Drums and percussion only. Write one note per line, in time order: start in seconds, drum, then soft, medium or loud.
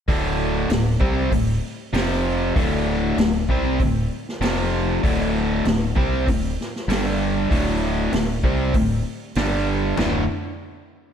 0.08 kick loud
0.08 open hi-hat medium
0.70 snare loud
0.70 open hi-hat medium
1.01 kick loud
1.32 kick medium
1.32 open hi-hat medium
1.94 snare loud
1.94 open hi-hat medium
2.56 kick loud
2.56 open hi-hat medium
3.18 snare loud
3.18 open hi-hat soft
3.49 kick loud
3.80 kick medium
3.80 open hi-hat medium
4.29 snare soft
4.42 snare loud
4.42 open hi-hat medium
5.04 kick loud
5.04 open hi-hat medium
5.65 snare loud
5.65 open hi-hat medium
5.96 kick loud
6.28 kick medium
6.28 open hi-hat medium
6.61 snare soft
6.76 snare soft
6.90 snare loud
6.90 open hi-hat medium
7.51 kick loud
7.51 open hi-hat medium
8.13 snare medium
8.13 open hi-hat medium
8.43 kick loud
8.74 kick medium
8.74 open hi-hat medium
9.35 snare medium
9.35 open hi-hat medium
9.97 snare medium
9.97 floor tom medium
9.97 crash medium